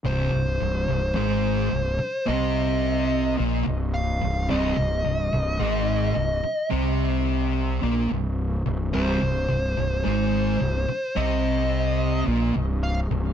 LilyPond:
<<
  \new Staff \with { instrumentName = "Lead electric guitar" } { \time 4/4 \key c \minor \tempo 4 = 54 c''4 c''4 ees''4 r8 f''8 | ees''2 r2 | c''4 c''4 ees''4 r8 f''8 | }
  \new Staff \with { instrumentName = "Distorted electric guitar" } { \clef bass \time 4/4 \key c \minor <c, c>16 c,16 c,16 c,16 <aes, aes>8 c,16 r16 <c c'>4 <bes, bes>16 c,8 c,16 | <c, c>16 c,16 c,16 c,16 <aes, aes>8 c,16 r16 <c c'>4 <bes, bes>16 c,8 c,16 | <c, c>16 c,16 c,16 c,16 <aes, aes>8 c,16 r16 <c c'>4 <bes, bes>16 c,8 c,16 | }
  \new Staff \with { instrumentName = "Fingered electric bass" } { \clef bass \time 4/4 \key c \minor c,,16 c,,16 c,,16 c,,16 aes,,8 c,,16 r16 c,4 bes,,16 c,,8 c,,16 | c,,16 c,,16 c,,16 c,,16 aes,,8 c,,16 r16 c,4 bes,,16 c,,8 c,,16 | c,,16 c,,16 c,,16 c,,16 aes,,8 c,,16 r16 c,4 bes,,16 c,,8 c,,16 | }
>>